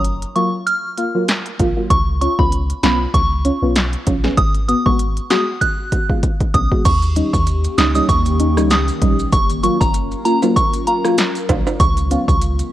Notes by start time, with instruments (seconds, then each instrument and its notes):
Already playing: sub bass F#1
0.05 closed hi-hat
0.22 closed hi-hat
0.36 synth stab F#3 A#3 F4, synth bell C#6, closed hi-hat
0.67 synth bell F6, closed hi-hat
0.97 synth stab A#3 F4, closed hi-hat
1.15 synth stab F#3 A#3 F4
1.28 snare, clap, closed hi-hat
1.46 closed hi-hat
1.59 sub bass A#1, synth stab A#3 F4, kick, closed hi-hat
1.77 synth stab F#3 A#3 F4
1.90 sub bass C#2, synth bell C#6, kick, closed hi-hat
2.21 synth stab C#4 F4, synth bell C#6, closed hi-hat
2.39 sub bass C#2, synth stab B3 C#4 F4, synth bell B5, kick
2.52 closed hi-hat
2.70 closed hi-hat
2.83 sub bass B1, synth stab B3 C#4 F4, synth bell B5, snare, clap, closed hi-hat
3.14 sub bass C#2, synth bell C#6, kick, closed hi-hat
3.45 synth stab C#4 F4, closed hi-hat
3.62 sub bass B1, synth stab B3 C#4 F4
3.76 snare, clap, closed hi-hat
3.93 closed hi-hat
4.07 sub bass A#1, synth stab C#4 F4, kick, closed hi-hat
4.24 synth stab B3 C#4 G#4, snare
4.38 sub bass G#1, synth bell D#6, kick, closed hi-hat
4.55 closed hi-hat
4.69 synth stab B3 F#4, synth bell D#6, closed hi-hat
4.86 sub bass G#1, synth stab G#3 B3 F#4, synth bell C#6, kick
4.99 closed hi-hat
5.17 closed hi-hat
5.30 synth stab G#3 B3 F#4, synth bell D#6, snare, clap, closed hi-hat
5.61 synth bell F#6, kick, closed hi-hat
5.92 synth stab B3 F#4, kick, closed hi-hat
6.10 synth stab G#3 B3 F4, kick
6.23 kick, closed hi-hat
6.40 kick, closed hi-hat
6.54 sub bass B1, synth stab B3 C#4, synth bell D#6, kick, closed hi-hat
6.71 synth stab G#3 B3 F#4, kick
6.85 sub bass D#2, ambient pad D#3 A#3 C#4 G4, synth bell C#6, kick, closed hi-hat, crash, maracas
7.02 closed hi-hat, maracas
7.16 synth stab G3 C#4 D#4, closed hi-hat, maracas
7.33 sub bass D#2, synth bell C#6, kick, maracas
7.47 closed hi-hat, maracas
7.64 closed hi-hat, maracas
7.78 sub bass C#2, synth stab C#4 D#4, synth bell D#6, snare, clap, closed hi-hat, maracas
7.95 synth stab G3 C#4 D#4, synth bell D#6, maracas
8.09 sub bass D#2, synth bell C#6, kick, closed hi-hat, maracas
8.26 closed hi-hat, maracas
8.40 synth stab C#4 D#4, closed hi-hat
8.57 sub bass C#2, synth stab G3 C#4 D#4, cross-stick, maracas
8.70 synth bell D#6, snare, clap, closed hi-hat, maracas
8.88 closed hi-hat, maracas
9.01 sub bass A#1, synth stab G3 C#4 D#4, kick, closed hi-hat
9.19 maracas
9.32 sub bass F#1, ambient pad F#3 F4 A#4, synth bell C#6, kick, closed hi-hat, maracas
9.50 closed hi-hat, maracas
9.63 synth stab F#3 A#3 F4, synth bell C#6, closed hi-hat, maracas
9.81 sub bass F#1, synth bell A#5, kick, maracas
9.94 closed hi-hat, maracas
10.11 closed hi-hat, maracas
10.25 synth stab A#3 F4, synth bell A#5, closed hi-hat, maracas
10.42 synth stab F#3 A#3 F4, high timbale, maracas
10.56 synth bell C#6, kick, closed hi-hat, maracas
10.73 closed hi-hat, maracas
10.87 synth stab A#3 F4, synth bell A#5, closed hi-hat
11.05 synth stab F#3 A#3 F4, cross-stick, maracas
11.18 snare, clap, closed hi-hat, maracas
11.35 closed hi-hat, maracas
11.49 sub bass A#1, synth stab F#3 A#3 F4, kick, closed hi-hat, high timbale
11.67 high timbale, maracas
11.80 sub bass C#2, ambient pad C#3 G#3 B3, synth bell C#6, kick, closed hi-hat, maracas
11.97 closed hi-hat, maracas
12.11 synth stab B3 C#4 F4, closed hi-hat, maracas
12.28 sub bass C#2, synth bell C#6, kick, maracas
12.42 closed hi-hat, maracas
12.59 closed hi-hat, maracas